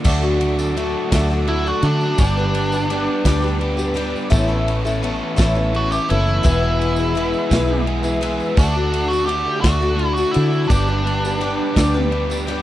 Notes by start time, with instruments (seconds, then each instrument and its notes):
0.04 fingered electric bass D2, overdriven electric guitar D3 F#3 A3 D4 F#4, twelve-string acoustic guitar D3 A3 D4 F#4 A4, tonewheel organ A4 D5 F#5 D6, kick, crash, tambourine
0.22 twelve-string acoustic guitar D4 F#4 A4
0.39 overdriven electric guitar A3 D4 F#4, ride
0.59 twelve-string acoustic guitar D4 F#4 A4, tambourine
0.75 overdriven electric guitar F#3 A3 D4 F#4, twelve-string acoustic guitar A3 D4 F#4, ride
0.79 twelve-string acoustic guitar A4
1.11 fingered electric bass D2, twelve-string acoustic guitar D3 A3, overdriven electric guitar A3 D4 F#4, kick, snare, ride, tambourine
1.15 twelve-string acoustic guitar D4 F#4 A4
1.30 twelve-string acoustic guitar D4 F#4 A4, tambourine
1.46 overdriven electric guitar F#3 A3 D4 F#4, lead electric guitar E4, ride
1.66 twelve-string acoustic guitar D4 F#4 A4
1.82 fingered electric bass D3, twelve-string acoustic guitar A3 D4 F#4 A4, overdriven electric guitar D4 F#4, ride
1.87 overdriven electric guitar A3
2.01 tambourine
2.17 fingered electric bass G1, overdriven electric guitar G2 D3 G3 B3, twelve-string acoustic guitar G3 D4 G4, tonewheel organ B4 G5, kick, ride, tambourine
2.21 overdriven electric guitar D4 G4, twelve-string acoustic guitar B4
2.37 twelve-string acoustic guitar D4 G4 B4
2.54 overdriven electric guitar G3 B3 D4 G4, ride
2.72 twelve-string acoustic guitar D4 G4 B4, tambourine
2.90 twelve-string acoustic guitar G3 D4 G4 B4, overdriven electric guitar G3 B3 D4, ride
2.94 overdriven electric guitar G4
3.25 fingered electric bass D2, twelve-string acoustic guitar G3 D4 G4 B4, overdriven electric guitar G3 B3 D4 G4, kick, snare, ride, tambourine
3.42 twelve-string acoustic guitar D4 G4 B4, tambourine
3.59 overdriven electric guitar G3 B3 D4 G4, ride
3.77 twelve-string acoustic guitar D4 G4 B4, tambourine
3.94 twelve-string acoustic guitar G3 D4 G4 B4, overdriven electric guitar D4 G4, ride
3.98 overdriven electric guitar G3 B3
4.16 tambourine
4.30 fingered electric bass A1, twelve-string acoustic guitar A2 E3 B3 C#4 E4 A4, overdriven electric guitar A2 E3 A3, tonewheel organ C#6, kick, ride, tambourine
4.34 overdriven electric guitar C#4 A4
4.48 twelve-string acoustic guitar B3 C#4 E4 A4
4.67 overdriven electric guitar A3 C#4 A4, ride
4.85 twelve-string acoustic guitar B3 C#4 E4 A4, tambourine
5.01 overdriven electric guitar E3 A3 C#4, twelve-string acoustic guitar B3 C#4 E4 A4, ride
5.05 overdriven electric guitar A4
5.36 fingered electric bass A1, twelve-string acoustic guitar A2 E3 B3 C#4 E4 A4, overdriven electric guitar A3 C#4 A4, kick, snare, ride, tambourine
5.55 twelve-string acoustic guitar B3 C#4 E4 A4, tambourine
5.73 overdriven electric guitar E3 A3 C#4 A4, lead electric guitar F#4, ride
5.91 twelve-string acoustic guitar B3 C#4 E4 A4, lead electric guitar G4, tambourine
6.08 fingered electric bass F#1, overdriven electric guitar A3 C#4 A4, twelve-string acoustic guitar B3 C#4 E4 A4, ride
6.27 tambourine
6.43 fingered electric bass E1, overdriven electric guitar E2 B2 E3 G#3 B3 G#4, twelve-string acoustic guitar E3 B3 E4 G#4 B4, tonewheel organ E5 G#5 E6, kick, ride, tambourine
6.63 twelve-string acoustic guitar E4 G#4 B4
6.79 overdriven electric guitar E3 G#3 B3 G#4, ride
6.96 twelve-string acoustic guitar G#4 B4, tambourine
7.00 twelve-string acoustic guitar E4
7.13 overdriven electric guitar E3 G#3 B3 G#4, twelve-string acoustic guitar B3 E4 G#4, ride, tambourine
7.18 twelve-string acoustic guitar B4
7.33 tambourine
7.49 fingered electric bass B1, twelve-string acoustic guitar E3 B3 E4 G#4 B4, overdriven electric guitar E3 G#3 B3 G#4, kick, snare, ride, tambourine
7.68 twelve-string acoustic guitar E4 G#4 B4
7.85 overdriven electric guitar E3 G#3 B3 G#4, ride
8.03 twelve-string acoustic guitar E4 G#4 B4, tambourine
8.20 overdriven electric guitar E3 G#3 B3 G#4, twelve-string acoustic guitar B3 E4 G#4 B4, ride
8.40 tambourine
8.55 fingered electric bass D2, overdriven electric guitar D3 A3 D4 F#4, twelve-string acoustic guitar D3 A3 D4 F#4 A4, tonewheel organ F#5, kick, crash, tambourine
8.59 tonewheel organ A4 D5 D6
8.75 twelve-string acoustic guitar D4 F#4 A4
8.90 overdriven electric guitar A3 D4 F#4, ride
9.10 twelve-string acoustic guitar D4 F#4 A4, tambourine
9.25 overdriven electric guitar D3 A3 D4 F#4, twelve-string acoustic guitar A3, lead electric guitar G4, ride
9.29 twelve-string acoustic guitar D4 A4
9.61 fingered electric bass D2, twelve-string acoustic guitar D3 A3, overdriven electric guitar A3 D4 F#4, lead electric guitar F#4, kick, snare, ride
9.65 twelve-string acoustic guitar D4 F#4 A4, tambourine
9.81 twelve-string acoustic guitar D4 F#4 A4, tambourine
9.95 overdriven electric guitar D3 A3 D4 F#4, ride
10.14 lead electric guitar F#4, twelve-string acoustic guitar A4, tambourine
10.19 twelve-string acoustic guitar D4 F#4
10.31 twelve-string acoustic guitar A3 D4, overdriven electric guitar D4 F#4, lead electric guitar E4, ride
10.35 fingered electric bass D3, overdriven electric guitar A3, twelve-string acoustic guitar F#4 A4
10.54 tambourine
10.66 overdriven electric guitar G2 D3 G3 B3 D4 G4, twelve-string acoustic guitar G3, tonewheel organ D5, kick, ride
10.70 fingered electric bass G1, twelve-string acoustic guitar D4 G4 B4, tonewheel organ B4 G5, tambourine
10.87 twelve-string acoustic guitar D4 G4 B4
11.02 overdriven electric guitar G3 B3 D4 G4
11.07 ride
11.25 twelve-string acoustic guitar D4 G4 B4, tambourine
11.38 overdriven electric guitar G3 B3 D4 G4, twelve-string acoustic guitar G3 D4, ride
11.42 twelve-string acoustic guitar G4 B4
11.73 fingered electric bass D2, overdriven electric guitar G3 B3 D4 G4, twelve-string acoustic guitar G3, kick, snare, ride
11.77 twelve-string acoustic guitar D4 G4 B4, tambourine
11.94 twelve-string acoustic guitar D4 G4 B4
12.09 overdriven electric guitar G3 B3 D4 G4, ride
12.30 twelve-string acoustic guitar D4 G4 B4, tambourine
12.46 twelve-string acoustic guitar G3 D4 G4 B4, overdriven electric guitar G3 B3 D4 G4, ride